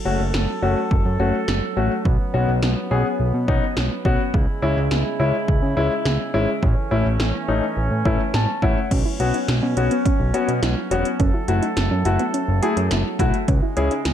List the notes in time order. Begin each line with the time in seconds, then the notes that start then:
Already playing: F#3 C#4 A4
0.05 F#1 A3 C#4 F#4
0.20 F#1
0.34 F#1, snare
0.62 F#1 A3 C#4 F#4
0.91 F#1, kick
1.05 F#2
1.20 F#1 A3 C#4 F#4
1.48 F#1, snare
1.77 A1 A3 C#4 F#4
2.05 B1 B3, kick
2.34 B1 B3 C#4 F#4
2.48 B1
2.62 B1, snare
2.91 B1 B3 C#4 G#4
3.20 B1
3.34 B2
3.48 B1 B3 C#4 D#4, kick
3.77 B1, snare
4.05 B1 B3 C#4 F#4, kick
4.34 C#2 C#3 G#3 E4, kick
4.62 C#2 G#3 C#4 E4
4.77 C#2
4.91 C#2, snare
5.20 C#2 G#3 C#4 E4
5.48 C#2, kick
5.63 C#3
5.77 C#2 G#3 C#4 E4
6.05 C#2, snare
6.34 G#1 G#3 C#4 E4
6.63 A1 E3 A3 C#4, kick
6.91 A1 A3 C#4 E4
7.05 A1
7.20 A1, snare
7.48 A1 A3 C#4 D#4
7.77 A1
7.91 A2
8.05 A1 A3 C#4 E4, kick
8.34 A1 A5, snare
8.62 A1 A3 C#4 E4 F#5, kick
8.91 B1 F#3 B3 C#4, kick, closed hi-hat, crash
9.05 E4
9.20 B1 B3 C#4 F#4, closed hi-hat
9.34 D#4, closed hi-hat
9.48 B1, snare, closed hi-hat
9.63 B2 C#4
9.77 B1 B3 C#4 F#4, closed hi-hat
9.91 B3, closed hi-hat
10.05 C#4, kick, closed hi-hat
10.20 B1
10.34 B3 C#4 F#4, closed hi-hat
10.48 B2, closed hi-hat
10.63 B1 E4, snare, closed hi-hat
10.91 E1 B3 C#4 F#4, closed hi-hat
11.05 closed hi-hat
11.20 F#1 C#4 E4 A4, kick, closed hi-hat
11.34 E4
11.48 F#1 A3 E4 F#4, closed hi-hat
11.62 D#4, closed hi-hat
11.77 F#1, snare, closed hi-hat
11.91 F#2 C#4
12.05 F#1 A3 E4 F#4, closed hi-hat
12.19 B3, closed hi-hat
12.34 C#4, closed hi-hat
12.48 F#1
12.62 A3 E4 F#4 G#4, closed hi-hat
12.77 F#2, closed hi-hat
12.91 F#1 E4, snare, closed hi-hat
13.19 B1 A3 E4 F#4, kick, closed hi-hat
13.34 closed hi-hat
13.48 C#2 C#3 G#3 C#4, kick, closed hi-hat
13.62 E4
13.77 C#2 C#4 E4 G#4, closed hi-hat
13.91 D#4, closed hi-hat
14.05 C#2, snare, closed hi-hat